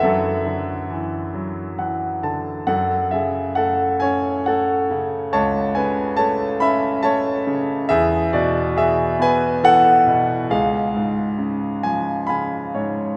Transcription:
<<
  \new Staff \with { instrumentName = "Grand piano" } { \time 6/8 \key fis \minor \tempo 4. = 46 << { e''4 r2 | fis''8 e''8 fis''8 gis''8 fis''8 r8 | a''8 gis''8 a''8 b''8 a''8 r8 | e''8 d''8 e''8 gis''8 fis''4 |
eis''4. gis''8 b''4 | } \\ { a'4 r2 | a'8 gis'8 a'8 cis''8 a'8 r8 | cis''8 b'8 cis''8 e''8 cis''8 r8 | gis'8 fis'8 gis'8 b'8 a'4 |
gis'2 gis''4 | } >> }
  \new Staff \with { instrumentName = "Grand piano" } { \clef bass \time 6/8 \key fis \minor <fis, d e fis>8 d8 e8 fis8 <e fis''>8 <d a''>8 | fis,8 cis8 a8 cis'8 a8 cis8 | cis,8 cis8 a8 cis'8 a8 cis8 | e,8 b,8 e8 b8 e8 b,8 |
cis,8 gis,8 cis8 eis8 <cis eis''>8 <gis, cis''>8 | }
>>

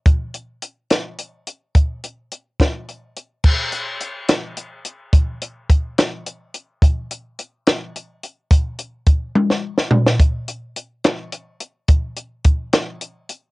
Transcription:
\new DrumStaff \with { instrumentName = "Drums" } \drummode { \time 6/8 \tempo 4. = 71 <hh bd>8 hh8 hh8 <hh sn>8 hh8 hh8 | <hh bd>8 hh8 hh8 <hh bd sn>8 hh8 hh8 | <cymc bd>8 hh8 hh8 <hh sn>8 hh8 hh8 | <hh bd>8 hh8 <hh bd>8 <hh sn>8 hh8 hh8 |
<hh bd>8 hh8 hh8 <hh sn>8 hh8 hh8 | <hh bd>8 hh8 <hh bd>8 tommh16 sn8 sn16 tomfh16 sn16 | <hh bd>8 hh8 hh8 <hh sn>8 hh8 hh8 | <hh bd>8 hh8 <hh bd>8 <hh sn>8 hh8 hh8 | }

